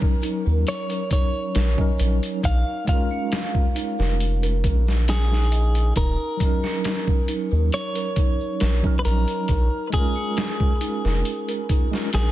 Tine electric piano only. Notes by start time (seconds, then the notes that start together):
Already playing: F#3 C#4 D#4 A#4
1.77 F#3 C#4 D#4 A#4
2.85 G#3 C#4
2.90 F4 A#4
6.37 F#3 C#4
6.42 D#4 A#4
8.82 F#3 C#4 D#4
8.87 A#4
9.90 G#3 C#4
9.95 F4 A#4
11.91 G#3 C#4 F4
11.96 A#4